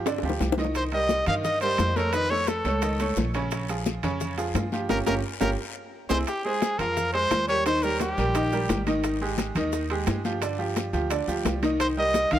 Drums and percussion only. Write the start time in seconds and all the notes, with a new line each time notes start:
0.06 high bongo, high conga, high timbale, long guiro, maracas
0.18 high bongo
0.23 high conga, high timbale
0.30 low bongo
0.40 low bongo, high conga, low timbale, short guiro, maracas
0.52 low bongo
0.57 high conga, low timbale, short guiro, maracas
0.64 low bongo
0.75 high bongo, high conga, high timbale, long guiro, maracas
0.92 high conga, high timbale
1.09 high bongo, high conga, short guiro, maracas
1.26 high bongo, low conga, high timbale, short guiro, maracas
1.44 high bongo, high conga, low conga, long guiro, maracas
1.61 high bongo, high conga, high timbale, maracas
1.78 high bongo, low bongo, high conga, high timbale, low timbale, short guiro, maracas
1.96 high bongo, high conga, short guiro, maracas
2.13 high bongo, high conga, high timbale, long guiro, maracas
2.31 high conga
2.47 high bongo, high conga, high timbale, short guiro, maracas
2.65 high bongo, high conga, high timbale, short guiro, maracas
2.82 high bongo, high conga, high timbale, long guiro, maracas
3.00 high bongo, high conga, high timbale, maracas
3.16 high bongo, low bongo, high conga, low timbale, short guiro, maracas
3.34 high bongo, high timbale, short guiro, maracas
3.51 high bongo, high conga, high timbale, long guiro, maracas
3.69 high conga, high timbale, maracas
3.86 high bongo, high conga, short guiro, maracas
4.03 high bongo, low conga, high timbale, short guiro, maracas
4.20 high bongo, high conga, low conga, long guiro, maracas
4.38 high bongo, high conga, high timbale, maracas
4.55 high bongo, low bongo, high conga, high timbale, low timbale, short guiro, maracas
4.72 high bongo, high conga, short guiro, maracas
4.89 high bongo, high conga, high timbale, long guiro, maracas
5.06 high bongo, high conga, high timbale, long guiro, maracas
5.41 high bongo, high conga, high timbale, long guiro, maracas
6.10 high bongo, high conga, high timbale, long guiro, maracas
6.27 high bongo, high conga, high timbale, long guiro, maracas
6.45 high conga
6.62 high bongo, high conga, high timbale, low timbale, short guiro, maracas
6.79 low conga, high timbale, short guiro, maracas
6.97 high bongo, high conga, low conga, long guiro, maracas
7.14 high conga, high timbale
7.31 high bongo, low bongo, high conga, high timbale, low timbale, short guiro, maracas
7.48 short guiro, maracas
7.66 high bongo, high conga, high timbale, long guiro, maracas
7.83 high bongo, high conga, maracas
8.00 high bongo, high conga, high timbale, low timbale, short guiro, maracas
8.17 short guiro, maracas
8.35 high bongo, high conga, high timbale, long guiro, maracas
8.52 high bongo, high conga, maracas
8.69 high bongo, low bongo, high conga, high timbale, low timbale, short guiro, maracas
8.87 high bongo, high conga, high timbale, short guiro, maracas
9.04 high bongo, high conga, high timbale, long guiro, maracas
9.21 high conga
9.38 high bongo, high conga, high timbale, low timbale, short guiro, maracas
9.55 low conga, high timbale, short guiro, maracas
9.73 high bongo, high conga, long guiro, maracas
9.89 high conga, high timbale
10.07 high bongo, low bongo, high conga, high timbale, low timbale, short guiro, maracas
10.25 high conga, short guiro, maracas
10.42 high bongo, high conga, high timbale, long guiro, maracas
10.59 high bongo, high conga
10.76 high bongo, high conga, high timbale, low timbale, short guiro, maracas
10.93 short guiro, maracas
11.11 high bongo, high conga, high timbale, long guiro, maracas
11.28 high bongo, high conga, maracas
11.45 high bongo, low bongo, high conga, high timbale, low timbale, short guiro, maracas
11.63 high bongo, high conga, high timbale, short guiro, maracas
11.80 high bongo, high conga, high timbale, long guiro, maracas
11.98 high conga
12.14 high bongo, high conga, high timbale, low timbale, short guiro, maracas
12.31 low conga, high timbale, short guiro, maracas